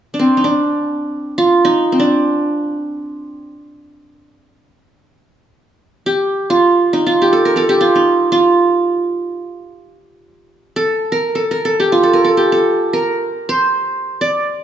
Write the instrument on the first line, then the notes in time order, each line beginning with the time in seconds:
qanun
0.14 D4
0.19 C4
0.37 D#4
0.44 D4
1.38 F4
1.65 D#4
1.92 C4
1.99 D4
6.06 G4
6.50 F4
6.93 D#4
7.06 F4
7.22 G4
7.33 A4
7.45 A#4
7.56 A4 A#4
7.69 G4
7.81 F4
7.96 D#4
8.32 F4
10.76 A4
11.12 A#4
11.35 A4
11.51 A#4
11.65 A4
11.80 G4
11.92 F4
12.03 A4
12.13 A#4
12.25 A4
12.37 G4
12.52 A4
12.93 A#4
13.49 C5
14.21 D5